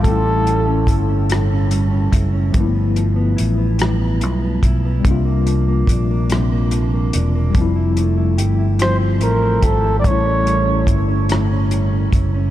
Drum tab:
HH |xxxxxx|xxxxxx|xxxxxx|xxxxxx|
SD |---r--|---r--|---r--|---r--|
BD |o-o--o|o----o|o-o---|o----o|

HH |xxxxxx|
SD |---r--|
BD |o-o--o|